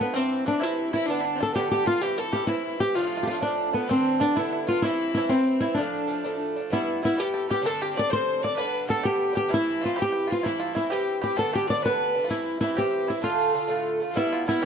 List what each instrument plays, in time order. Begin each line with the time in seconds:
Already playing: bouzouki D4
0.00 bouzouki F3 A3, five-string banjo B3, fiddle B3, nylon-string guitar B3
0.14 bouzouki G2 E3 C4 E4, five-string banjo C4, fiddle C4, nylon-string guitar C4
0.44 bouzouki G2 E3 C4 E4, fiddle D4, five-string banjo D4, nylon-string guitar D4
0.60 bouzouki G2 E3 C4 E4, five-string banjo E4, fiddle E4, nylon-string guitar E4
0.92 bouzouki C4 E4, fiddle E4, five-string banjo E4, nylon-string guitar E4
0.97 bouzouki E3
1.06 bouzouki G2 D3 B3 D4, fiddle D4, five-string banjo D4
1.10 nylon-string guitar D4
1.20 fiddle E4
1.25 fiddle D4
1.35 bouzouki G2, fiddle C4
1.39 bouzouki D3 B3 D4, fiddle D4, five-string banjo A4, nylon-string guitar A4
1.54 bouzouki G2 D3 B3 D4, fiddle G4, nylon-string guitar G4, five-string banjo G4
1.71 nylon-string guitar G4, fiddle G4, five-string banjo G4
1.85 bouzouki D3 B3 D4, fiddle F4, nylon-string guitar F4, five-string banjo F4
2.00 bouzouki G2 E3 C4 E4, nylon-string guitar G4, fiddle G4, five-string banjo G4
2.18 nylon-string guitar A4, five-string banjo A4, fiddle A4
2.32 bouzouki G2 E3 C4, five-string banjo G4, nylon-string guitar G4
2.36 bouzouki E4
2.47 bouzouki G2 E3 C4 E4, nylon-string guitar E4, fiddle E4, five-string banjo E4
2.79 bouzouki E3 C4 E4, nylon-string guitar G4, fiddle G4, five-string banjo G4
2.95 bouzouki A2 F3 A3 D4, fiddle F4, nylon-string guitar F4, five-string banjo F4
3.07 five-string banjo F4
3.17 five-string banjo F4
3.23 nylon-string guitar G4
3.27 bouzouki A2 F3 A3 D4, nylon-string guitar F4, five-string banjo F4, fiddle F4
3.41 bouzouki A2 F3 A3 D4, five-string banjo D4, nylon-string guitar D4, fiddle D4
3.73 bouzouki F3 A3 D4, five-string banjo B3, nylon-string guitar B3, fiddle B3
3.88 bouzouki G2 D3 D4, fiddle C4, five-string banjo C4, nylon-string guitar C4
4.20 bouzouki G2 D3 B3 D4, five-string banjo D4, fiddle D4, nylon-string guitar D4
4.36 bouzouki G2 D3 B3 D4, fiddle E4, five-string banjo E4, nylon-string guitar E4
4.52 five-string banjo E4
4.67 bouzouki D3 B3 D4, five-string banjo F4, nylon-string guitar F4, fiddle F4
4.82 bouzouki G2 E3 C4 E4, nylon-string guitar E4, fiddle E4, five-string banjo E4
5.15 bouzouki G2 E3 C4, nylon-string guitar E4, five-string banjo E4
5.19 bouzouki E4
5.29 bouzouki G2 E3 C4 E4, nylon-string guitar C4, fiddle C4, five-string banjo C4
5.60 bouzouki C4 E4, nylon-string guitar E4, five-string banjo E4
5.65 bouzouki E3
5.74 bouzouki A2 F3 A3, nylon-string guitar D4, five-string banjo D4, fiddle D4
5.79 bouzouki D4
6.08 bouzouki A2 F3 A3 D4
6.24 bouzouki A2 F3 A3 D4
6.56 bouzouki F3 A3 D4
6.70 bouzouki G2 G3 B3 E4, fiddle E4, five-string banjo E4, nylon-string guitar E4
7.02 bouzouki G2 G3 B3 E4, five-string banjo E4, fiddle E4, nylon-string guitar E4
7.17 bouzouki G2 G3 B3 E4, fiddle G4, five-string banjo G4, nylon-string guitar G4
7.34 five-string banjo A4
7.47 bouzouki G3 B3 E4, fiddle G4, five-string banjo G4, nylon-string guitar G4
7.62 bouzouki G2 D3 C4 D4, fiddle A4
7.66 five-string banjo A4, nylon-string guitar A4
7.81 fiddle G4, five-string banjo G4, nylon-string guitar G4
7.94 bouzouki G2 D3 C4 D4, fiddle D5, five-string banjo D5
7.99 nylon-string guitar D5
8.10 bouzouki G2 D3 C4 D4, fiddle C5, five-string banjo C5, nylon-string guitar C5
8.40 bouzouki D3 C4 D4, fiddle D5, five-string banjo D5
8.44 nylon-string guitar D5
8.56 bouzouki G2 D3 B3 D4, fiddle B4, five-string banjo B4, nylon-string guitar B4
8.85 bouzouki G2 D3 B3 D4, five-string banjo A4, fiddle A4
8.90 nylon-string guitar A4
9.01 bouzouki G2 D3 B3 D4, five-string banjo G4, fiddle G4, nylon-string guitar G4
9.33 bouzouki D3 B3 D4, five-string banjo G4, nylon-string guitar G4
9.48 bouzouki G2 E3 C4 E4, fiddle E4, five-string banjo E4
9.54 nylon-string guitar E4
9.81 bouzouki G2 E3 C4 E4, five-string banjo F4, nylon-string guitar F4
9.96 bouzouki G2 E3 C4 E4, five-string banjo G4, fiddle G4
10.02 nylon-string guitar G4
10.12 five-string banjo G4
10.27 bouzouki E3 C4 E4, five-string banjo F4, fiddle F4
10.32 nylon-string guitar F4
10.43 bouzouki G2 E3 C4 E4, five-string banjo E4, fiddle E4, nylon-string guitar E4
10.60 five-string banjo F4
10.73 bouzouki G2 E3 C4 E4, five-string banjo E4, nylon-string guitar E4, fiddle E4
10.90 bouzouki G2 E3 C4 E4, five-string banjo G4, fiddle G4, nylon-string guitar G4
11.22 bouzouki E3 C4 E4, five-string banjo G4, fiddle G4, nylon-string guitar G4
11.36 bouzouki G2 D3 B3 D4, five-string banjo A4, fiddle A4, nylon-string guitar A4
11.53 five-string banjo G4, fiddle G4, nylon-string guitar G4
11.68 bouzouki G2 D3 B3 D4, five-string banjo D5, fiddle D5, nylon-string guitar D5
11.82 bouzouki G2 D3 B3 D4, fiddle B4, five-string banjo B4, nylon-string guitar B4
12.15 bouzouki D3 B3 D4
12.24 bouzouki G2, five-string banjo F4
12.29 bouzouki E3 C4 E4, nylon-string guitar E4, fiddle E4, five-string banjo E4
12.61 bouzouki G2 E3 C4 E4, nylon-string guitar E4, fiddle E4, five-string banjo E4
12.75 bouzouki G2 E3 C4 E4, fiddle G4, five-string banjo G4, nylon-string guitar G4
13.07 bouzouki E3 C4 E4, five-string banjo E4, fiddle E4, nylon-string guitar E4
13.21 bouzouki A2 D3 A3 F4, nylon-string guitar F4, five-string banjo F4, fiddle F4
13.52 bouzouki A2 D3 A3
13.56 bouzouki F4
13.68 bouzouki A2 D3 A3 F4
14.00 bouzouki D3 A3 F4
14.10 bouzouki G2, fiddle F4
14.15 bouzouki G3 B3 E4, five-string banjo E4, fiddle E4, nylon-string guitar E4
14.32 five-string banjo F4
14.45 bouzouki G2 G3 B3 E4, five-string banjo E4, fiddle E4, nylon-string guitar E4
14.61 bouzouki B3 E4